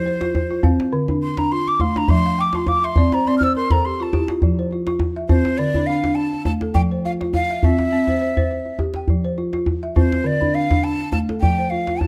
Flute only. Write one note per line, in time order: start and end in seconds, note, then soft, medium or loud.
0.00 0.94 C5 medium
1.22 1.39 C6 medium
1.38 1.53 A#5 medium
1.51 1.69 C6 medium
1.68 1.82 D6 medium
1.80 1.99 C6 medium
1.97 2.10 A#5 medium
2.09 2.42 C6 loud
2.40 2.56 D6 medium
2.55 2.69 C6 medium
2.68 2.86 D6 medium
2.84 3.15 C6 medium
3.13 3.28 A#5 medium
3.27 3.37 C6 loud
3.38 3.45 F6 medium
3.43 3.55 E6 loud
3.56 3.73 C6 medium
3.71 3.86 A#5 medium
3.85 4.04 C6 medium
4.02 4.30 A5 medium
5.29 5.59 C5 medium
5.58 5.88 D5 medium
5.86 6.16 F5 medium
6.15 6.45 A5 medium
6.45 6.52 A5 loud
6.74 6.81 G5 loud
7.05 7.11 F5 medium
7.34 7.66 F5 loud
7.64 8.80 E5 medium
9.96 10.28 C5 medium
10.26 10.56 D5 medium
10.54 10.85 F5 loud
10.83 11.11 A5 loud
11.12 11.18 A5 loud
11.41 11.71 G5 medium
11.70 12.01 F5 medium
12.00 12.07 A5 medium